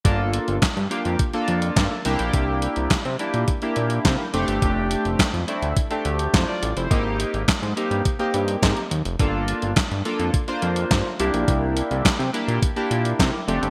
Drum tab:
HH |x-xxxxxxxxxxx-xx|x-xxxxxxxxxxx-xx|x-xxxxxxxxxxx-xx|x-xxxxxxxxxxxxxx|
CP |----x-------x---|----x-------x---|----x-------x---|----x-------x---|
SD |----o-------o---|----o-------o---|----o-------o---|----o-------o---|
BD |o---o---o---o---|o---o---o---o---|o---o---o---o---|o---o---o---o---|

HH |x-xxxxxxxxxxx-xx|x-xxxxxxxxxxx-xx|
CP |----x-------x---|----x-------x---|
SD |----o-------o---|----o-------o---|
BD |o---o---o---o---|o---o---o---o---|